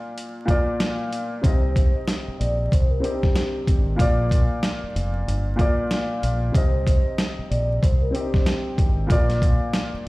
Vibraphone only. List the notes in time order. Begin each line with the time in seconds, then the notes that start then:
1.43 C5
1.95 D#5
2.39 D5
2.72 C5
2.89 A#4
3.03 C5
6.53 C5
7.08 D#5
7.50 D5
7.82 C5
8.02 A#4
8.15 C5